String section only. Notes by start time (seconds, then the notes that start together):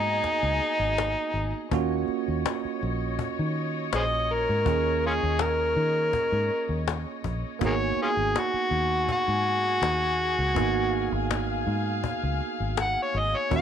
Already playing: G#4 D#5
1.70 C#5 D#5
7.60 G#4 G#5
10.55 F5
13.51 C#5 D#5